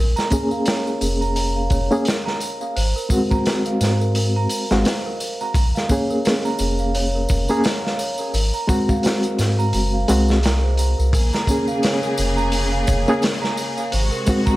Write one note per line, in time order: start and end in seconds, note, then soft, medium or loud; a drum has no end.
0.00 0.14 A#1 medium
0.00 0.15 A#4 medium
0.16 0.30 A#5 loud
0.16 snare soft
0.16 tambourine soft
0.30 1.86 A#3 medium
0.30 1.86 C#4 medium
0.30 1.87 G#4 medium
0.30 0.43 A#5 medium
0.30 kick medium
0.30 open hi-hat medium
0.30 tambourine medium
0.51 0.65 F5 medium
0.51 tambourine soft
0.66 0.85 C#5 medium
0.66 snare loud
0.66 open hi-hat medium
0.66 tambourine soft
0.86 1.00 A#4 medium
0.86 tambourine soft
1.01 1.68 F1 medium
1.01 1.20 A#4 medium
1.01 open hi-hat medium
1.01 tambourine medium
1.21 1.34 A#5 medium
1.21 tambourine soft
1.36 1.47 A#5 medium
1.36 open hi-hat medium
1.36 tambourine soft
1.56 1.70 F5 medium
1.70 1.89 F1 loud
1.70 1.90 C#5 medium
1.70 kick medium
1.70 open hi-hat medium
1.70 tambourine medium
1.91 2.05 A#3 medium
1.91 2.05 C#4 medium
1.91 2.06 G#4 medium
1.91 2.04 A#4 medium
1.91 tambourine soft
2.05 2.25 A#4 medium
2.05 snare loud
2.05 open hi-hat medium
2.05 tambourine soft
2.26 2.40 A#5 medium
2.26 snare soft
2.40 2.52 A#5 medium
2.40 open hi-hat medium
2.40 tambourine medium
2.61 2.74 F5 medium
2.61 tambourine soft
2.76 2.94 G#1 loud
2.76 2.95 C5 medium
2.76 open hi-hat medium
2.76 tambourine soft
2.96 3.09 A#4 medium
2.96 tambourine soft
3.09 4.64 G#3 medium
3.09 4.65 C4 medium
3.09 4.66 F#4 medium
3.09 3.30 A#4 medium
3.09 kick medium
3.09 open hi-hat medium
3.09 tambourine medium
3.31 3.45 A#5 medium
3.31 kick medium
3.31 tambourine soft
3.46 3.57 A#5 medium
3.46 snare loud
3.46 open hi-hat medium
3.46 tambourine medium
3.65 3.79 F5 medium
3.65 closed hi-hat soft
3.65 tambourine soft
3.81 4.47 G#2 medium
3.81 4.00 C5 medium
3.81 snare medium
3.81 open hi-hat medium
3.81 tambourine medium
4.01 4.14 A#4 medium
4.01 tambourine soft
4.15 4.35 A#4 medium
4.15 open hi-hat medium
4.15 tambourine medium
4.36 4.50 A#5 loud
4.49 4.62 A#5 medium
4.49 open hi-hat medium
4.49 tambourine medium
4.71 4.84 G#1 medium
4.71 4.85 G#3 medium
4.71 4.85 C4 medium
4.71 4.86 F#4 medium
4.71 4.84 F5 medium
4.71 snare soft
4.71 tambourine soft
4.85 5.05 C5 medium
4.85 snare loud
4.85 open hi-hat medium
4.85 tambourine soft
5.06 5.19 A#4 medium
5.20 5.39 A#4 medium
5.20 open hi-hat medium
5.20 tambourine medium
5.41 5.55 A#5 medium
5.41 tambourine soft
5.54 5.72 A#1 medium
5.54 5.67 A#5 medium
5.54 kick loud
5.54 open hi-hat medium
5.54 tambourine medium
5.75 5.88 F5 medium
5.75 snare soft
5.75 tambourine soft
5.89 7.44 A#3 medium
5.89 7.45 C#4 medium
5.89 7.45 G#4 medium
5.89 6.09 C#5 medium
5.89 kick medium
5.89 open hi-hat medium
5.89 tambourine medium
6.10 6.24 A#4 medium
6.10 tambourine soft
6.25 6.44 A#4 medium
6.25 snare loud
6.25 open hi-hat medium
6.25 tambourine soft
6.45 6.58 A#5 medium
6.45 tambourine soft
6.59 7.26 F1 medium
6.59 6.71 A#5 medium
6.59 open hi-hat medium
6.59 tambourine medium
6.79 6.93 F5 medium
6.79 tambourine soft
6.95 7.14 C#5 medium
6.95 open hi-hat medium
6.95 tambourine soft
7.15 7.28 A#4 medium
7.29 7.47 F1 loud
7.29 7.49 A#4 medium
7.29 kick medium
7.29 open hi-hat medium
7.29 tambourine medium
7.48 7.64 A#3 medium
7.48 7.64 C#4 medium
7.48 7.64 G#4 loud
7.48 7.63 A#5 medium
7.48 tambourine soft
7.64 7.76 A#5 medium
7.64 snare loud
7.64 open hi-hat medium
7.64 tambourine medium
7.85 7.98 F5 medium
7.85 snare soft
7.99 8.18 C#5 medium
7.99 open hi-hat medium
7.99 tambourine medium
8.18 8.32 A#4 medium
8.18 tambourine soft
8.33 8.51 G#1 medium
8.33 8.53 A#4 medium
8.33 open hi-hat medium
8.33 tambourine medium
8.54 8.67 A#5 medium
8.54 tambourine soft
8.67 10.05 G#3 medium
8.67 10.05 C4 medium
8.67 10.06 F#4 medium
8.67 8.80 A#5 medium
8.67 kick medium
8.67 open hi-hat medium
8.67 tambourine medium
8.89 9.02 F5 medium
8.89 kick medium
8.89 tambourine soft
9.03 9.23 C5 medium
9.03 snare loud
9.03 open hi-hat medium
9.03 tambourine medium
9.23 9.37 A#4 medium
9.23 closed hi-hat soft
9.23 tambourine soft
9.38 9.73 G#2 medium
9.38 9.57 A#4 medium
9.38 snare soft
9.38 open hi-hat medium
9.38 tambourine medium
9.59 9.72 A#5 medium
9.59 tambourine soft
9.73 10.05 F#1 medium
9.73 9.85 A#5 medium
9.73 open hi-hat medium
9.73 tambourine medium
9.94 10.07 F5 medium
10.08 10.95 C2 medium
10.08 10.36 G#3 medium
10.08 10.37 C4 medium
10.08 10.37 F#4 medium
10.08 10.26 A#4 medium
10.08 open hi-hat medium
10.08 tambourine medium
10.28 10.43 G#4 medium
10.28 snare soft
10.28 tambourine soft
10.43 10.55 A#5 medium
10.43 snare loud
10.43 open hi-hat medium
10.43 tambourine soft
10.63 10.77 C5 medium
10.77 10.96 A#5 medium
10.77 open hi-hat medium
10.77 tambourine medium
10.98 11.12 C2 medium
10.98 11.12 A#4 medium
10.98 tambourine soft
11.12 11.31 A#1 loud
11.12 13.89 C#3 medium
11.12 13.89 A#3 medium
11.12 13.89 G#4 medium
11.12 11.32 A#4 medium
11.12 kick loud
11.12 open hi-hat medium
11.12 tambourine medium
11.33 11.47 A#5 medium
11.33 snare medium
11.33 tambourine soft
11.47 13.03 A#3 medium
11.47 13.03 C#4 medium
11.47 13.04 G#4 medium
11.47 11.60 A#5 medium
11.47 kick medium
11.47 open hi-hat medium
11.47 tambourine medium
11.68 11.81 F5 medium
11.68 tambourine soft
11.83 12.02 C#5 medium
11.83 snare loud
11.83 open hi-hat medium
11.83 tambourine soft
12.03 12.16 A#4 medium
12.03 tambourine soft
12.17 12.85 F1 medium
12.17 12.37 A#4 medium
12.17 open hi-hat medium
12.17 tambourine medium
12.37 12.51 A#5 loud
12.37 tambourine soft
12.52 12.64 A#5 medium
12.52 open hi-hat medium
12.52 tambourine medium
12.72 12.86 F5 medium
12.87 13.05 F1 loud
12.87 13.06 C#5 medium
12.87 kick medium
12.87 open hi-hat medium
12.87 tambourine medium
13.06 13.22 A#3 medium
13.06 13.22 C#4 medium
13.06 13.23 G#4 medium
13.06 13.19 A#4 medium
13.06 tambourine soft
13.21 13.40 A#4 medium
13.21 snare loud
13.21 open hi-hat medium
13.21 tambourine soft
13.42 13.55 A#5 loud
13.42 snare soft
13.57 13.68 A#5 medium
13.57 open hi-hat medium
13.57 tambourine medium
13.77 13.90 F5 medium
13.77 tambourine soft
13.91 14.10 G#1 medium
13.91 14.56 C3 medium
13.91 14.56 G#3 medium
13.91 14.56 F#4 medium
13.91 14.11 C5 medium
13.91 open hi-hat medium
13.91 tambourine medium
14.11 14.25 A#4 medium
14.11 tambourine soft
14.26 14.56 G#3 medium
14.26 14.56 C4 medium
14.26 14.56 F#4 medium
14.26 14.46 A#4 medium
14.26 kick medium
14.26 open hi-hat medium
14.26 tambourine medium
14.46 14.56 A#5 loud
14.46 kick loud
14.46 tambourine soft